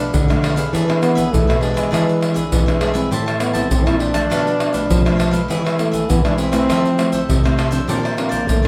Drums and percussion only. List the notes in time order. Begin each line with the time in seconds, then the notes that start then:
0.14 pandeiro, shaker, surdo
0.30 pandeiro, tamborim, shaker, surdo
0.44 pandeiro, tamborim, surdo
0.57 pandeiro, shaker
0.74 pandeiro, shaker, surdo
0.90 pandeiro, tamborim, shaker
1.03 pandeiro, tamborim, shaker
1.18 pandeiro, shaker, surdo
1.34 pandeiro, shaker, surdo
1.50 pandeiro, tamborim, shaker
1.63 pandeiro
1.77 pandeiro, tamborim, shaker, surdo
1.94 pandeiro, tamborim, shaker, surdo
2.09 pandeiro, shaker
2.22 pandeiro, tamborim
2.36 pandeiro, shaker, surdo
2.52 pandeiro, shaker, surdo
2.68 pandeiro, tamborim, shaker, surdo
2.81 pandeiro, tamborim
2.95 pandeiro, shaker
3.12 pandeiro, shaker, surdo
3.28 pandeiro, tamborim, shaker
3.40 pandeiro, tamborim, shaker
3.55 pandeiro, shaker, surdo
3.71 pandeiro, shaker, surdo
3.87 pandeiro, tamborim, shaker
4.00 pandeiro
4.14 pandeiro, tamborim, shaker, surdo
4.32 pandeiro, tamborim, shaker, surdo
4.47 pandeiro, shaker
4.60 pandeiro, tamborim
4.74 pandeiro, shaker, surdo
4.90 pandeiro, shaker, surdo
5.06 pandeiro, tamborim, shaker, surdo
5.20 pandeiro, tamborim, shaker, surdo
5.33 pandeiro, shaker
5.50 pandeiro, shaker, surdo
5.67 pandeiro, tamborim, shaker
5.79 pandeiro, tamborim, shaker
5.93 pandeiro, shaker, surdo
6.10 pandeiro, shaker, surdo
6.25 pandeiro, tamborim, shaker
6.38 pandeiro, shaker
6.53 pandeiro, tamborim, shaker, surdo
6.70 pandeiro, tamborim, shaker, surdo
6.85 pandeiro, shaker
6.99 pandeiro, tamborim, shaker
7.13 pandeiro, shaker, surdo
7.30 pandeiro, shaker, surdo
7.46 pandeiro, tamborim, shaker, surdo
7.59 pandeiro, tamborim
7.72 pandeiro, shaker
7.89 pandeiro, shaker, surdo
8.05 pandeiro, tamborim, shaker
8.18 pandeiro, tamborim
8.32 pandeiro, shaker, surdo
8.49 pandeiro, shaker, surdo